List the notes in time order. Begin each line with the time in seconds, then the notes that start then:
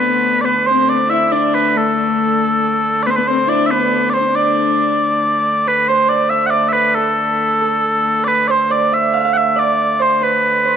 Already playing: D3 A3 B3 B4 D5 E5
0.41 D3 A3 B3 B4 D5
0.45 B4
0.66 C4 C5
0.89 D5
1.09 E4 E5
1.31 D4 D5
1.53 B4
1.75 A3 A4
3.03 B3 B4 D5
3.10 C5
3.16 B3 B4
3.27 C4 C5
3.45 D4 E4 D5
3.49 D5
3.66 E5
3.70 B3 B4
4.10 C5 D5
4.15 C4 C5
4.20 D4
4.26 C4
4.35 D4 D5
5.67 D3 A3 B4
5.88 C5
6.09 D5
6.30 E5
6.46 D5 F#5
6.53 D5
6.68 E5
6.73 B4
6.95 A4
7.61 A4
8.24 B4 D5
8.48 C5 D5
8.70 D5
8.93 E5
9.14 F5
9.20 F5
9.25 F5
9.33 E5 F#5
9.37 E5
9.56 D5
9.99 C5
10.21 B4
10.65 C5